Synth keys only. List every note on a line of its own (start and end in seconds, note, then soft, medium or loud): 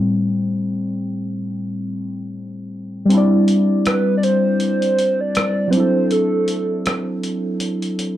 0.00 2.70 A2 soft
0.00 2.70 G3 soft
0.00 2.71 C4 medium
3.05 5.67 G3 medium
3.05 5.68 C4 medium
3.12 5.70 D4 medium
3.12 5.71 E4 medium
3.17 5.73 D5 medium
5.68 8.17 F#3 medium
5.68 8.17 C4 medium
5.74 8.17 D4 medium
5.74 8.17 E4 medium
5.79 8.17 A4 medium